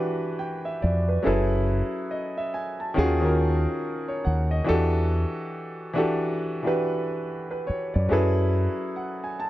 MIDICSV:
0, 0, Header, 1, 4, 480
1, 0, Start_track
1, 0, Tempo, 857143
1, 696, Time_signature, 4, 2, 24, 8
1, 5319, End_track
2, 0, Start_track
2, 0, Title_t, "Grand piano"
2, 0, Program_c, 0, 0
2, 0, Control_c, 0, 64, 127
2, 0, Note_on_c, 0, 52, 72
2, 0, Note_on_c, 0, 62, 64
2, 0, Note_on_c, 0, 66, 69
2, 0, Note_on_c, 0, 67, 68
2, 0, Note_on_c, 0, 71, 81
2, 218, Note_on_c, 0, 79, 62
2, 222, Note_off_c, 0, 71, 0
2, 358, Note_off_c, 0, 79, 0
2, 364, Note_on_c, 0, 76, 59
2, 451, Note_off_c, 0, 76, 0
2, 461, Note_on_c, 0, 74, 67
2, 600, Note_off_c, 0, 74, 0
2, 608, Note_on_c, 0, 71, 53
2, 621, Note_off_c, 0, 52, 0
2, 624, Note_off_c, 0, 62, 0
2, 627, Note_off_c, 0, 66, 0
2, 631, Note_off_c, 0, 67, 0
2, 686, Note_on_c, 0, 54, 80
2, 691, Note_on_c, 0, 61, 76
2, 695, Note_on_c, 0, 64, 77
2, 699, Note_on_c, 0, 68, 68
2, 701, Note_off_c, 0, 71, 0
2, 704, Control_c, 0, 64, 0
2, 705, Note_on_c, 0, 69, 72
2, 710, Note_on_c, 0, 71, 87
2, 810, Control_c, 0, 64, 127
2, 1181, Note_on_c, 0, 75, 59
2, 1320, Note_off_c, 0, 75, 0
2, 1330, Note_on_c, 0, 76, 67
2, 1351, Note_off_c, 0, 54, 0
2, 1354, Note_off_c, 0, 61, 0
2, 1356, Note_off_c, 0, 64, 0
2, 1358, Note_off_c, 0, 68, 0
2, 1361, Note_off_c, 0, 69, 0
2, 1363, Note_off_c, 0, 71, 0
2, 1414, Note_off_c, 0, 76, 0
2, 1422, Note_on_c, 0, 80, 67
2, 1560, Note_off_c, 0, 80, 0
2, 1568, Note_on_c, 0, 81, 56
2, 1647, Note_on_c, 0, 51, 85
2, 1654, Note_on_c, 0, 61, 79
2, 1658, Note_on_c, 0, 65, 76
2, 1663, Control_c, 0, 64, 0
2, 1665, Note_on_c, 0, 66, 81
2, 1672, Note_on_c, 0, 68, 93
2, 1769, Control_c, 0, 64, 127
2, 1784, Note_off_c, 0, 51, 0
2, 1787, Note_off_c, 0, 61, 0
2, 1789, Note_off_c, 0, 65, 0
2, 1792, Note_on_c, 0, 51, 73
2, 1793, Note_off_c, 0, 66, 0
2, 1794, Note_off_c, 0, 81, 0
2, 1796, Note_off_c, 0, 68, 0
2, 1798, Note_on_c, 0, 61, 71
2, 1804, Note_on_c, 0, 65, 67
2, 1811, Note_on_c, 0, 66, 62
2, 1817, Note_on_c, 0, 70, 78
2, 2287, Note_on_c, 0, 73, 63
2, 2373, Note_off_c, 0, 73, 0
2, 2378, Note_on_c, 0, 78, 62
2, 2518, Note_off_c, 0, 78, 0
2, 2525, Note_on_c, 0, 75, 62
2, 2540, Note_off_c, 0, 51, 0
2, 2543, Note_off_c, 0, 61, 0
2, 2546, Note_off_c, 0, 65, 0
2, 2550, Note_off_c, 0, 66, 0
2, 2553, Note_off_c, 0, 70, 0
2, 2600, Note_on_c, 0, 52, 83
2, 2606, Note_on_c, 0, 62, 76
2, 2612, Note_on_c, 0, 66, 75
2, 2618, Note_on_c, 0, 67, 69
2, 2622, Control_c, 0, 64, 0
2, 2625, Note_on_c, 0, 69, 94
2, 2733, Control_c, 0, 64, 127
2, 2753, Note_off_c, 0, 75, 0
2, 3268, Note_off_c, 0, 52, 0
2, 3271, Note_off_c, 0, 62, 0
2, 3274, Note_off_c, 0, 66, 0
2, 3277, Note_off_c, 0, 67, 0
2, 3281, Note_off_c, 0, 69, 0
2, 3323, Note_on_c, 0, 52, 82
2, 3331, Note_on_c, 0, 62, 81
2, 3336, Note_on_c, 0, 66, 78
2, 3342, Note_on_c, 0, 67, 81
2, 3348, Note_on_c, 0, 69, 82
2, 3670, Note_off_c, 0, 52, 0
2, 3673, Note_off_c, 0, 62, 0
2, 3676, Note_off_c, 0, 66, 0
2, 3679, Note_off_c, 0, 67, 0
2, 3682, Note_off_c, 0, 69, 0
2, 3712, Note_on_c, 0, 52, 66
2, 3718, Note_on_c, 0, 62, 61
2, 3724, Note_on_c, 0, 66, 68
2, 3731, Note_on_c, 0, 67, 61
2, 3735, Note_on_c, 0, 71, 82
2, 4061, Note_off_c, 0, 71, 0
2, 4205, Note_on_c, 0, 71, 60
2, 4292, Note_off_c, 0, 71, 0
2, 4295, Note_on_c, 0, 73, 66
2, 4437, Note_off_c, 0, 73, 0
2, 4447, Note_on_c, 0, 74, 58
2, 4460, Note_off_c, 0, 52, 0
2, 4463, Note_off_c, 0, 62, 0
2, 4466, Note_off_c, 0, 66, 0
2, 4469, Note_off_c, 0, 67, 0
2, 4529, Note_on_c, 0, 54, 84
2, 4532, Note_on_c, 0, 61, 68
2, 4539, Note_on_c, 0, 64, 74
2, 4542, Control_c, 0, 64, 0
2, 4542, Note_on_c, 0, 68, 74
2, 4547, Note_on_c, 0, 69, 74
2, 4552, Note_on_c, 0, 71, 88
2, 4635, Control_c, 0, 64, 127
2, 4674, Note_off_c, 0, 74, 0
2, 5018, Note_on_c, 0, 78, 56
2, 5158, Note_off_c, 0, 78, 0
2, 5173, Note_on_c, 0, 80, 61
2, 5193, Note_off_c, 0, 54, 0
2, 5194, Note_off_c, 0, 61, 0
2, 5198, Note_off_c, 0, 64, 0
2, 5199, Note_off_c, 0, 68, 0
2, 5202, Note_off_c, 0, 69, 0
2, 5204, Note_off_c, 0, 71, 0
2, 5256, Note_off_c, 0, 80, 0
2, 5262, Note_on_c, 0, 81, 66
2, 5319, Note_off_c, 0, 81, 0
2, 5319, End_track
3, 0, Start_track
3, 0, Title_t, "Fingered electric bass"
3, 0, Program_c, 1, 33
3, 468, Note_on_c, 1, 41, 92
3, 655, Note_off_c, 1, 41, 0
3, 709, Note_on_c, 1, 30, 86
3, 1015, Note_off_c, 1, 30, 0
3, 1668, Note_on_c, 1, 39, 102
3, 2047, Note_off_c, 1, 39, 0
3, 2388, Note_on_c, 1, 39, 89
3, 2575, Note_off_c, 1, 39, 0
3, 2629, Note_on_c, 1, 40, 95
3, 2935, Note_off_c, 1, 40, 0
3, 4455, Note_on_c, 1, 42, 84
3, 4524, Note_off_c, 1, 42, 0
3, 4546, Note_on_c, 1, 42, 89
3, 4853, Note_off_c, 1, 42, 0
3, 5319, End_track
4, 0, Start_track
4, 0, Title_t, "Muted fingered electric bass strokes"
4, 4309, Note_on_c, 9, 29, 47
4, 4365, Note_off_c, 9, 29, 0
4, 5319, End_track
0, 0, End_of_file